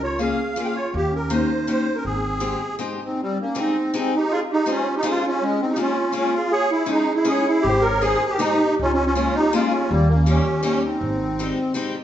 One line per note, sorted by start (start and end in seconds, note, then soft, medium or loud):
0.00 0.31 C#2 loud
0.00 0.19 F4 medium
0.00 0.21 C#5 medium
0.19 0.38 A#3 soft
0.19 0.38 C#4 soft
0.19 0.38 F4 soft
0.19 0.55 G#4 medium
0.19 0.38 G#4 soft
0.19 0.58 F5 medium
0.56 0.75 A#3 medium
0.56 0.76 C#4 soft
0.56 0.75 F4 soft
0.56 0.60 G#4 medium
0.56 0.75 G#4 medium
0.56 0.62 F5 medium
0.60 0.65 A#4 medium
0.64 0.74 G#4 medium
0.64 0.76 F5 medium
0.64 0.67 G5 medium
0.75 0.92 F4 medium
0.75 0.94 C#5 medium
0.93 1.42 D#2 loud
0.93 1.11 A#3 medium
0.93 1.14 G4 medium
1.11 1.29 C#4 medium
1.11 1.32 A#4 medium
1.30 1.49 A#3 medium
1.30 1.49 C#4 medium
1.30 1.49 D#4 soft
1.30 1.66 D#4 medium
1.30 1.49 G4 medium
1.30 1.68 C5 medium
1.67 1.86 A#3 medium
1.67 1.86 C#4 medium
1.67 1.93 D#4 medium
1.67 1.86 D#4 medium
1.67 1.86 G4 medium
1.67 1.97 C5 medium
1.95 2.04 C#4 medium
1.95 2.05 A#4 medium
2.05 2.53 G#1 medium
2.05 2.76 C4 medium
2.05 2.76 G#4 medium
2.40 2.60 G#3 medium
2.40 2.60 C4 medium
2.40 2.60 D#4 soft
2.40 2.60 G4 medium
2.79 2.99 G#3 medium
2.79 2.99 C4 medium
2.79 2.99 D#4 medium
2.79 2.99 G4 medium
3.04 3.21 C4 medium
3.04 3.19 D#4 medium
3.22 3.38 G3 loud
3.22 3.39 C4 medium
3.41 3.58 A#3 medium
3.41 3.57 C#4 medium
3.55 3.74 G#3 medium
3.55 3.75 C4 medium
3.55 3.75 D#4 soft
3.55 3.75 G4 soft
3.55 3.75 G#4 medium
3.59 3.96 C4 medium
3.59 3.93 D#4 medium
3.94 4.13 G#3 medium
3.94 4.12 C4 medium
3.94 4.13 D#4 medium
3.94 4.13 G4 soft
3.94 4.13 G#4 medium
3.98 4.15 C4 medium
4.16 4.33 D#4 medium
4.16 4.32 G4 medium
4.31 4.40 F4 loud
4.31 4.41 G#4 loud
4.51 4.70 D#4 loud
4.51 4.67 G4 medium
4.66 4.86 G#3 medium
4.66 4.86 C4 medium
4.66 4.86 C#4 medium
4.66 4.86 F4 soft
4.66 4.86 G#4 medium
4.72 4.95 C#4 medium
4.72 4.93 F4 medium
4.95 5.07 D#4 medium
4.95 5.05 G4 medium
5.03 5.23 G#3 medium
5.03 5.23 C4 medium
5.03 5.23 C#4 medium
5.03 5.22 F4 medium
5.03 5.23 G#4 medium
5.08 5.26 F4 loud
5.08 5.24 G#4 medium
5.27 5.44 C#4 loud
5.27 5.42 F4 medium
5.42 5.61 G#3 loud
5.42 5.60 C#4 loud
5.61 5.72 C4 loud
5.61 5.72 D#4 medium
5.71 5.78 D#4 medium
5.71 5.78 G4 medium
5.76 5.96 G#3 medium
5.76 5.96 A#3 medium
5.76 5.96 C#4 soft
5.76 5.96 F4 medium
5.76 5.96 G#4 medium
5.81 6.14 C#4 loud
5.81 6.14 F4 medium
6.12 6.32 G#3 medium
6.12 6.33 A#3 medium
6.12 6.33 C#4 medium
6.12 6.34 C#4 loud
6.12 6.32 F4 medium
6.12 6.33 G#4 medium
6.20 6.35 F4 medium
6.34 6.52 F4 medium
6.34 6.52 G#4 medium
6.52 6.71 G#4 loud
6.52 6.70 C#5 loud
6.71 6.90 E4 loud
6.71 6.89 G#4 medium
6.86 7.07 G#3 medium
6.86 7.07 C#4 medium
6.86 7.07 D#4 soft
6.86 7.07 E4 soft
6.86 7.07 G#4 medium
6.90 7.13 D#4 medium
6.90 7.14 G#4 medium
7.14 7.28 E4 medium
7.14 7.28 G#4 medium
7.24 7.45 G#3 medium
7.24 7.45 C#4 medium
7.24 7.46 D#4 soft
7.24 7.46 E4 soft
7.24 7.45 G#4 medium
7.24 7.47 G#4 loud
7.31 7.47 C#5 medium
7.47 7.66 E4 medium
7.47 7.66 G#4 medium
7.61 8.14 G#1 loud
7.61 7.83 G4 loud
7.69 7.85 C5 loud
7.81 8.02 A#4 loud
7.87 8.03 C#5 medium
8.01 8.22 G#3 medium
8.01 8.22 C4 soft
8.01 8.22 D#4 soft
8.01 8.22 G4 soft
8.01 8.32 G#4 loud
8.01 8.22 G#4 medium
8.07 8.32 C5 loud
8.30 8.40 G4 loud
8.34 8.42 A#4 medium
8.39 8.59 G#3 medium
8.39 8.59 C4 medium
8.39 8.75 D#4 loud
8.39 8.60 D#4 medium
8.39 8.60 G4 medium
8.39 8.59 G#4 medium
8.44 8.78 G4 medium
8.79 9.27 C#2 loud
8.79 8.92 C#4 loud
8.79 8.93 F4 loud
8.93 9.05 C#4 loud
8.93 9.04 F4 medium
9.06 9.14 C#4 loud
9.06 9.17 F4 medium
9.15 9.35 G#3 medium
9.15 9.35 A#3 medium
9.15 9.35 C#4 medium
9.15 9.35 F4 soft
9.15 9.35 F4 loud
9.15 9.35 G#4 medium
9.35 9.53 D#4 loud
9.39 9.54 G4 medium
9.53 9.72 G#3 medium
9.53 9.72 A#3 medium
9.53 9.72 C#4 medium
9.53 9.72 F4 medium
9.53 9.73 F4 loud
9.53 9.71 G#4 medium
9.53 9.72 G#4 medium
9.71 9.90 C#4 medium
9.75 9.90 F4 medium
9.89 10.38 D#2 loud
9.89 10.09 G3 loud
9.94 10.09 A#3 loud
10.08 10.27 A#3 medium
10.14 10.28 C#4 medium
10.26 10.45 G3 medium
10.26 10.45 A#3 medium
10.26 10.45 C#4 soft
10.26 10.61 C#4 medium
10.26 10.45 D#4 soft
10.26 10.45 G4 medium
10.30 10.62 G4 medium
10.63 10.82 G3 medium
10.63 10.82 A#3 medium
10.63 10.82 C#4 medium
10.63 10.83 C#4 medium
10.63 10.82 D#4 medium
10.63 10.82 G4 medium
10.85 11.74 C4 medium
10.85 11.73 D#4 medium
11.01 11.50 G#1 loud
11.39 11.58 G3 medium
11.39 11.58 G#3 medium
11.39 11.58 C4 medium
11.39 11.58 D#4 medium
11.39 11.58 G4 medium
11.74 11.95 G3 medium
11.74 11.95 G#3 medium
11.74 11.95 C4 medium
11.74 11.95 D#4 medium
11.74 11.95 G4 medium